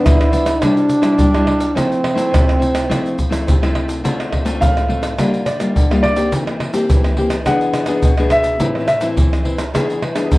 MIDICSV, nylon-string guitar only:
0, 0, Header, 1, 2, 480
1, 0, Start_track
1, 0, Key_signature, -1, "major"
1, 0, Tempo, 570342
1, 1482, Time_signature, 4, 2, 24, 8
1, 3403, Key_signature, -1, "minor"
1, 8739, End_track
2, 0, Start_track
2, 0, Title_t, "Nylon-string guitar"
2, 0, Program_c, 0, 24
2, 0, Note_on_c, 0, 53, 57
2, 0, Note_on_c, 0, 59, 70
2, 0, Note_on_c, 0, 62, 72
2, 48, Note_on_c, 0, 50, 70
2, 235, Note_off_c, 0, 53, 0
2, 239, Note_off_c, 0, 59, 0
2, 242, Note_off_c, 0, 62, 0
2, 268, Note_on_c, 0, 53, 53
2, 275, Note_on_c, 0, 59, 57
2, 280, Note_on_c, 0, 62, 70
2, 416, Note_off_c, 0, 53, 0
2, 419, Note_off_c, 0, 59, 0
2, 421, Note_off_c, 0, 62, 0
2, 501, Note_off_c, 0, 50, 0
2, 519, Note_on_c, 0, 48, 75
2, 521, Note_on_c, 0, 55, 60
2, 524, Note_on_c, 0, 62, 59
2, 528, Note_on_c, 0, 64, 65
2, 843, Note_off_c, 0, 55, 0
2, 843, Note_off_c, 0, 62, 0
2, 846, Note_off_c, 0, 64, 0
2, 853, Note_on_c, 0, 55, 58
2, 856, Note_on_c, 0, 62, 66
2, 859, Note_on_c, 0, 64, 66
2, 977, Note_off_c, 0, 48, 0
2, 982, Note_off_c, 0, 55, 0
2, 992, Note_on_c, 0, 55, 71
2, 1069, Note_off_c, 0, 62, 0
2, 1072, Note_off_c, 0, 64, 0
2, 1117, Note_off_c, 0, 55, 0
2, 1127, Note_on_c, 0, 55, 64
2, 1129, Note_on_c, 0, 62, 64
2, 1136, Note_on_c, 0, 64, 67
2, 1446, Note_off_c, 0, 55, 0
2, 1448, Note_off_c, 0, 62, 0
2, 1449, Note_off_c, 0, 64, 0
2, 1475, Note_on_c, 0, 53, 66
2, 1477, Note_on_c, 0, 57, 54
2, 1480, Note_on_c, 0, 60, 57
2, 1482, Note_on_c, 0, 64, 59
2, 1704, Note_off_c, 0, 57, 0
2, 1705, Note_off_c, 0, 60, 0
2, 1707, Note_off_c, 0, 64, 0
2, 1809, Note_on_c, 0, 57, 59
2, 1815, Note_on_c, 0, 60, 63
2, 1815, Note_on_c, 0, 64, 71
2, 1935, Note_off_c, 0, 53, 0
2, 1946, Note_on_c, 0, 48, 72
2, 2148, Note_off_c, 0, 57, 0
2, 2149, Note_off_c, 0, 60, 0
2, 2150, Note_off_c, 0, 64, 0
2, 2180, Note_on_c, 0, 57, 52
2, 2184, Note_on_c, 0, 60, 55
2, 2186, Note_on_c, 0, 64, 64
2, 2393, Note_off_c, 0, 57, 0
2, 2394, Note_off_c, 0, 60, 0
2, 2396, Note_off_c, 0, 64, 0
2, 2410, Note_off_c, 0, 48, 0
2, 2431, Note_on_c, 0, 53, 74
2, 2433, Note_on_c, 0, 57, 56
2, 2437, Note_on_c, 0, 60, 62
2, 2438, Note_on_c, 0, 64, 65
2, 2662, Note_off_c, 0, 57, 0
2, 2665, Note_off_c, 0, 60, 0
2, 2665, Note_off_c, 0, 64, 0
2, 2773, Note_on_c, 0, 57, 53
2, 2778, Note_on_c, 0, 60, 59
2, 2782, Note_on_c, 0, 64, 65
2, 2893, Note_off_c, 0, 53, 0
2, 2919, Note_on_c, 0, 48, 68
2, 2990, Note_off_c, 0, 57, 0
2, 2991, Note_off_c, 0, 60, 0
2, 2994, Note_off_c, 0, 64, 0
2, 3046, Note_on_c, 0, 57, 59
2, 3050, Note_on_c, 0, 60, 61
2, 3054, Note_on_c, 0, 64, 73
2, 3366, Note_off_c, 0, 57, 0
2, 3367, Note_off_c, 0, 60, 0
2, 3370, Note_off_c, 0, 64, 0
2, 3377, Note_off_c, 0, 48, 0
2, 3397, Note_on_c, 0, 50, 60
2, 3400, Note_on_c, 0, 57, 47
2, 3401, Note_on_c, 0, 60, 54
2, 3406, Note_on_c, 0, 65, 63
2, 3722, Note_off_c, 0, 57, 0
2, 3724, Note_off_c, 0, 60, 0
2, 3725, Note_off_c, 0, 65, 0
2, 3741, Note_on_c, 0, 57, 64
2, 3746, Note_on_c, 0, 60, 53
2, 3750, Note_on_c, 0, 65, 64
2, 3856, Note_off_c, 0, 50, 0
2, 3873, Note_on_c, 0, 45, 69
2, 4074, Note_off_c, 0, 57, 0
2, 4075, Note_off_c, 0, 60, 0
2, 4078, Note_off_c, 0, 65, 0
2, 4109, Note_on_c, 0, 57, 53
2, 4114, Note_on_c, 0, 60, 48
2, 4118, Note_on_c, 0, 65, 52
2, 4317, Note_off_c, 0, 57, 0
2, 4320, Note_off_c, 0, 60, 0
2, 4322, Note_off_c, 0, 65, 0
2, 4334, Note_off_c, 0, 45, 0
2, 4359, Note_on_c, 0, 50, 66
2, 4364, Note_on_c, 0, 58, 60
2, 4367, Note_on_c, 0, 55, 56
2, 4370, Note_on_c, 0, 65, 66
2, 4588, Note_off_c, 0, 55, 0
2, 4589, Note_off_c, 0, 58, 0
2, 4590, Note_off_c, 0, 65, 0
2, 4707, Note_on_c, 0, 55, 54
2, 4709, Note_on_c, 0, 58, 53
2, 4715, Note_on_c, 0, 65, 61
2, 4818, Note_off_c, 0, 50, 0
2, 4845, Note_on_c, 0, 50, 67
2, 4917, Note_off_c, 0, 55, 0
2, 4918, Note_off_c, 0, 58, 0
2, 4919, Note_off_c, 0, 65, 0
2, 4970, Note_on_c, 0, 55, 57
2, 4977, Note_on_c, 0, 58, 58
2, 4982, Note_on_c, 0, 65, 58
2, 5168, Note_off_c, 0, 55, 0
2, 5172, Note_off_c, 0, 58, 0
2, 5172, Note_off_c, 0, 65, 0
2, 5184, Note_on_c, 0, 58, 60
2, 5188, Note_on_c, 0, 60, 62
2, 5194, Note_on_c, 0, 67, 69
2, 5300, Note_off_c, 0, 50, 0
2, 5319, Note_on_c, 0, 52, 62
2, 5635, Note_off_c, 0, 58, 0
2, 5637, Note_off_c, 0, 60, 0
2, 5640, Note_off_c, 0, 67, 0
2, 5667, Note_on_c, 0, 58, 55
2, 5671, Note_on_c, 0, 60, 58
2, 5671, Note_on_c, 0, 67, 62
2, 5777, Note_off_c, 0, 52, 0
2, 5811, Note_on_c, 0, 52, 64
2, 5997, Note_off_c, 0, 58, 0
2, 5998, Note_off_c, 0, 67, 0
2, 5999, Note_off_c, 0, 60, 0
2, 6040, Note_on_c, 0, 58, 50
2, 6043, Note_on_c, 0, 60, 58
2, 6047, Note_on_c, 0, 67, 56
2, 6183, Note_off_c, 0, 58, 0
2, 6183, Note_off_c, 0, 60, 0
2, 6186, Note_off_c, 0, 67, 0
2, 6263, Note_off_c, 0, 52, 0
2, 6287, Note_on_c, 0, 52, 68
2, 6290, Note_on_c, 0, 59, 57
2, 6294, Note_on_c, 0, 68, 64
2, 6295, Note_on_c, 0, 62, 58
2, 6607, Note_off_c, 0, 59, 0
2, 6608, Note_off_c, 0, 62, 0
2, 6610, Note_off_c, 0, 68, 0
2, 6628, Note_on_c, 0, 59, 57
2, 6634, Note_on_c, 0, 62, 56
2, 6635, Note_on_c, 0, 68, 62
2, 6742, Note_off_c, 0, 52, 0
2, 6767, Note_on_c, 0, 47, 68
2, 6838, Note_off_c, 0, 59, 0
2, 6839, Note_off_c, 0, 62, 0
2, 6841, Note_off_c, 0, 68, 0
2, 6891, Note_on_c, 0, 59, 59
2, 6895, Note_on_c, 0, 62, 65
2, 6898, Note_on_c, 0, 68, 64
2, 7209, Note_off_c, 0, 59, 0
2, 7211, Note_off_c, 0, 62, 0
2, 7212, Note_off_c, 0, 68, 0
2, 7221, Note_off_c, 0, 47, 0
2, 7238, Note_on_c, 0, 60, 54
2, 7242, Note_on_c, 0, 45, 70
2, 7243, Note_on_c, 0, 52, 59
2, 7245, Note_on_c, 0, 64, 58
2, 7466, Note_off_c, 0, 60, 0
2, 7468, Note_off_c, 0, 52, 0
2, 7469, Note_off_c, 0, 64, 0
2, 7586, Note_on_c, 0, 52, 66
2, 7590, Note_on_c, 0, 60, 63
2, 7593, Note_on_c, 0, 64, 61
2, 7698, Note_off_c, 0, 45, 0
2, 7703, Note_off_c, 0, 52, 0
2, 7714, Note_on_c, 0, 52, 75
2, 7918, Note_off_c, 0, 60, 0
2, 7920, Note_off_c, 0, 64, 0
2, 7941, Note_off_c, 0, 52, 0
2, 7951, Note_on_c, 0, 52, 54
2, 7956, Note_on_c, 0, 60, 61
2, 7961, Note_on_c, 0, 64, 59
2, 8098, Note_off_c, 0, 52, 0
2, 8100, Note_off_c, 0, 60, 0
2, 8103, Note_off_c, 0, 64, 0
2, 8194, Note_on_c, 0, 52, 75
2, 8198, Note_on_c, 0, 59, 62
2, 8199, Note_on_c, 0, 62, 65
2, 8204, Note_on_c, 0, 68, 65
2, 8424, Note_off_c, 0, 59, 0
2, 8426, Note_off_c, 0, 62, 0
2, 8428, Note_off_c, 0, 68, 0
2, 8545, Note_on_c, 0, 59, 63
2, 8545, Note_on_c, 0, 62, 60
2, 8549, Note_on_c, 0, 68, 65
2, 8655, Note_off_c, 0, 52, 0
2, 8681, Note_on_c, 0, 47, 66
2, 8739, Note_off_c, 0, 47, 0
2, 8739, Note_off_c, 0, 59, 0
2, 8739, Note_off_c, 0, 62, 0
2, 8739, Note_off_c, 0, 68, 0
2, 8739, End_track
0, 0, End_of_file